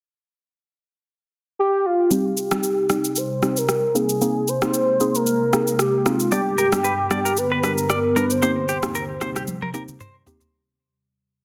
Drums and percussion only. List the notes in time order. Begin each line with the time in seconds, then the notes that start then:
2.11 shaker
2.37 shaker
2.51 cross-stick, shaker
2.63 shaker
2.90 cross-stick, shaker
3.05 shaker
3.16 shaker
3.43 cross-stick, shaker
3.57 shaker
3.69 cross-stick, shaker
3.96 shaker
4.09 shaker
4.21 shaker
4.48 shaker
4.62 cross-stick, shaker
4.74 shaker
5.00 shaker
5.15 shaker
5.26 shaker
5.53 cross-stick, shaker
5.67 shaker
5.79 cross-stick, shaker
6.06 cross-stick, shaker
6.20 shaker
6.32 shaker
6.58 shaker
6.73 cross-stick, shaker
6.84 shaker
7.11 cross-stick, shaker
7.26 shaker
7.37 shaker
7.64 cross-stick, shaker
7.78 shaker
7.90 cross-stick, shaker
8.17 shaker
8.30 shaker
8.42 shaker
8.69 shaker
8.83 cross-stick, shaker
8.95 shaker
9.21 cross-stick, shaker
9.36 cross-stick, shaker
9.47 high tom, shaker
9.62 high tom
9.74 shaker
9.88 mid tom, shaker
10.00 mid tom, shaker
10.27 floor tom, shaker
10.41 floor tom, shaker